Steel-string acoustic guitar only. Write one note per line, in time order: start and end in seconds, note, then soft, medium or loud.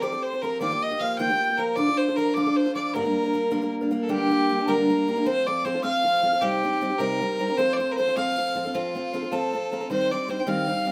0.02 0.13 F3 medium
0.02 0.13 C4 medium
0.02 0.12 G4 medium
0.02 0.11 A4 medium
0.12 0.33 C4 soft
0.12 0.33 G4 medium
0.12 0.32 A4 medium
0.33 0.42 C4 soft
0.33 0.43 G4 soft
0.33 0.42 A4 soft
0.43 0.60 F3 soft
0.43 0.61 C4 medium
0.43 0.61 G4 medium
0.43 0.61 A4 medium
0.61 0.72 D#3 medium
0.61 0.72 F3 medium
0.61 0.72 A#3 medium
0.61 0.71 F4 medium
0.61 0.70 G4 medium
0.71 0.92 A#3 soft
0.71 0.91 F4 medium
0.71 0.90 G4 soft
0.91 1.00 A#3 soft
0.91 1.00 F4 soft
0.91 1.01 G4 soft
1.00 1.18 F3 medium
1.00 1.18 A#3 medium
1.00 1.19 F4 medium
1.00 1.19 G4 medium
1.19 1.30 D#3 medium
1.19 1.30 F3 medium
1.19 1.30 A#3 medium
1.19 1.29 F4 medium
1.19 1.28 G4 medium
1.29 1.50 A#3 soft
1.29 1.49 F4 medium
1.29 1.48 G4 medium
1.49 1.58 A#3 soft
1.49 1.58 F4 soft
1.49 1.59 G4 soft
1.58 1.76 F3 medium
1.58 1.77 A#3 medium
1.58 1.77 F4 medium
1.58 1.78 G4 medium
1.77 1.88 D3 medium
1.77 1.88 F3 medium
1.77 1.88 D4 medium
1.77 1.87 F4 medium
1.77 1.86 A4 medium
1.88 2.09 D4 soft
1.88 2.08 F4 soft
1.88 2.07 A4 medium
2.08 2.17 D4 soft
2.08 2.18 F4 soft
2.08 2.17 A4 soft
2.18 2.35 F3 medium
2.18 2.36 D4 medium
2.18 2.36 F4 medium
2.18 2.37 A4 medium
2.36 2.47 D3 medium
2.36 2.47 F3 medium
2.36 2.47 D4 medium
2.36 2.46 F4 medium
2.36 2.45 A4 medium
2.47 2.66 D4 soft
2.47 2.65 F4 medium
2.47 2.65 A4 medium
2.66 2.75 D4 soft
2.66 2.75 F4 soft
2.66 2.75 A4 soft
2.75 2.94 F3 medium
2.75 2.94 D4 medium
2.75 2.94 F4 medium
2.75 2.95 A4 medium
2.95 3.05 G2 medium
2.95 3.05 D3 medium
2.95 3.05 G3 medium
2.95 3.05 A#3 medium
2.95 3.04 D4 medium
2.95 3.03 A#4 medium
3.05 3.25 G3 soft
3.05 3.24 A#3 soft
3.05 3.23 D4 soft
3.05 3.23 A#4 medium
3.24 3.32 G3 soft
3.24 3.33 A#3 soft
3.24 3.34 D4 soft
3.24 3.33 A#4 soft
3.33 3.50 G3 medium
3.33 3.50 A#3 medium
3.33 3.50 D4 medium
3.33 3.51 A#4 medium
3.51 3.62 G2 medium
3.51 3.62 D3 medium
3.51 3.62 G3 medium
3.51 3.62 A#3 loud
3.51 3.61 D4 medium
3.51 3.60 A#4 medium
3.62 3.82 G3 soft
3.62 3.81 A#3 soft
3.62 3.81 D4 medium
3.62 3.80 A#4 medium
3.81 3.89 G3 soft
3.81 3.90 A#3 soft
3.81 3.91 D4 soft
3.81 3.91 A#4 medium
3.91 4.08 G3 medium
3.91 4.08 A#3 medium
3.91 4.08 D4 medium
3.91 4.09 A#4 medium
4.08 4.31 G2 medium
4.08 4.31 D3 medium
4.08 4.29 G3 medium
4.08 4.30 A#3 medium
4.08 4.31 D4 medium
4.08 4.31 G4 medium
4.30 4.48 G3 medium
4.30 4.48 A#3 medium
4.30 4.49 D4 medium
4.30 4.50 G4 medium
4.49 4.59 G3 medium
4.49 4.59 A#3 medium
4.49 4.58 D4 medium
4.49 4.58 G4 medium
4.59 4.67 G3 soft
4.59 4.67 A#3 soft
4.59 4.67 D4 soft
4.59 4.68 G4 soft
4.67 4.89 G2 medium
4.67 4.89 D3 medium
4.67 4.88 G3 medium
4.67 4.89 A#3 medium
4.67 4.89 D4 medium
4.67 4.90 G4 medium
4.89 5.06 G3 soft
4.89 5.07 A#3 soft
4.89 5.07 D4 medium
4.89 5.08 G4 medium
5.07 5.17 G3 medium
5.07 5.16 A#3 medium
5.07 5.16 D4 medium
5.07 5.15 G4 medium
5.16 5.25 G3 soft
5.16 5.26 A#3 medium
5.16 5.26 D4 soft
5.16 5.26 G4 medium
5.26 5.46 F3 medium
5.26 5.46 C4 medium
5.26 5.47 F4 medium
5.26 5.47 A4 medium
5.47 5.63 F3 medium
5.47 5.64 C4 medium
5.47 5.65 F4 medium
5.47 5.65 A4 medium
5.65 5.74 F3 medium
5.65 5.75 C4 medium
5.65 5.74 F4 medium
5.65 5.73 A4 medium
5.74 5.82 C4 soft
5.74 5.83 F4 soft
5.74 5.83 A4 soft
5.83 6.03 F3 medium
5.83 6.04 C4 medium
5.83 6.04 F4 medium
5.83 6.05 A4 medium
6.04 6.21 F3 medium
6.04 6.22 C4 medium
6.04 6.23 F4 medium
6.04 6.23 A4 medium
6.23 6.32 F3 medium
6.23 6.33 C4 medium
6.23 6.32 F4 medium
6.23 6.31 A4 medium
6.32 6.41 C4 soft
6.32 6.42 F4 soft
6.32 6.42 A4 soft
6.41 6.63 C3 medium
6.41 6.62 G3 medium
6.41 6.63 C4 medium
6.41 6.63 D#4 medium
6.41 6.64 G4 medium
6.63 6.80 G3 medium
6.63 6.81 C4 medium
6.63 6.81 D#4 medium
6.63 6.82 G4 medium
6.81 6.90 G3 medium
6.81 6.91 C4 medium
6.81 6.90 D#4 medium
6.81 6.89 G4 medium
6.90 6.99 C4 soft
6.90 6.99 D#4 soft
6.90 7.00 G4 soft
6.99 7.21 C3 medium
6.99 7.19 G3 medium
6.99 7.20 C4 medium
6.99 7.21 D#4 medium
6.99 7.21 G4 medium
7.21 7.38 G3 medium
7.21 7.39 C4 soft
7.21 7.40 D#4 medium
7.21 7.40 G4 medium
7.39 7.49 G3 medium
7.39 7.49 C4 medium
7.39 7.49 D#4 medium
7.39 7.47 G4 medium
7.48 7.57 C4 soft
7.48 7.58 D#4 soft
7.48 7.58 G4 soft
7.58 7.78 F3 medium
7.58 7.79 C4 medium
7.58 7.79 F4 medium
7.58 7.80 A4 medium
7.79 7.97 F3 soft
7.79 7.97 C4 medium
7.79 7.98 F4 medium
7.79 7.98 A4 medium
7.98 8.07 F3 medium
7.98 8.07 C4 medium
7.98 8.07 F4 medium
7.98 8.06 A4 medium
8.07 8.15 C4 soft
8.07 8.16 F4 soft
8.07 8.16 A4 soft
8.16 8.36 F3 medium
8.16 8.37 C4 medium
8.16 8.37 F4 medium
8.16 8.38 A4 medium
8.37 8.54 F3 medium
8.37 8.54 C4 medium
8.37 8.55 F4 medium
8.37 8.56 A4 medium
8.55 8.64 F3 medium
8.55 8.64 C4 medium
8.55 8.65 F4 medium
8.55 8.64 A4 medium
8.65 8.74 C4 soft
8.65 8.74 F4 soft
8.65 8.74 A4 soft
8.75 8.94 F3 medium
8.75 8.94 C4 medium
8.75 8.95 F4 medium
8.75 8.96 A4 medium
8.95 9.12 F3 medium
8.95 9.13 C4 medium
8.95 9.13 F4 medium
8.95 9.14 A4 medium
9.13 9.22 F3 medium
9.13 9.23 C4 medium
9.13 9.22 F4 medium
9.13 9.21 A4 medium
9.22 9.31 C4 soft
9.22 9.32 F4 soft
9.22 9.31 A4 soft
9.32 9.52 F3 medium
9.32 9.53 C4 medium
9.32 9.53 F4 medium
9.32 9.53 A4 medium
9.53 9.71 F3 medium
9.53 9.71 C4 medium
9.53 9.72 F4 medium
9.53 9.72 A4 medium
9.72 9.80 F3 medium
9.72 9.81 C4 medium
9.72 9.80 F4 medium
9.72 9.79 A4 medium
9.81 9.89 C4 soft
9.81 9.90 F4 soft
9.81 9.89 A4 soft
9.90 10.11 D#3 medium
9.90 10.10 G3 medium
9.90 10.11 C4 medium
9.90 10.11 D#4 medium
9.90 10.12 G4 medium
10.11 10.27 G3 medium
10.11 10.28 C4 medium
10.11 10.29 D#4 medium
10.11 10.29 G4 medium
10.28 10.38 G3 medium
10.28 10.38 C4 medium
10.28 10.38 D#4 medium
10.28 10.37 G4 medium
10.38 10.46 C4 soft
10.38 10.47 D#4 soft
10.38 10.47 G4 soft
10.47 10.68 D#3 medium
10.47 10.66 G3 medium
10.47 10.67 C4 medium
10.47 10.68 D#4 medium
10.47 10.68 G4 medium
10.67 10.84 G3 medium
10.67 10.85 C4 medium
10.67 10.85 D#4 medium
10.67 10.86 G4 medium
10.85 10.92 G3 medium
10.85 10.92 C4 medium
10.85 10.92 D#4 medium
10.85 10.92 G4 medium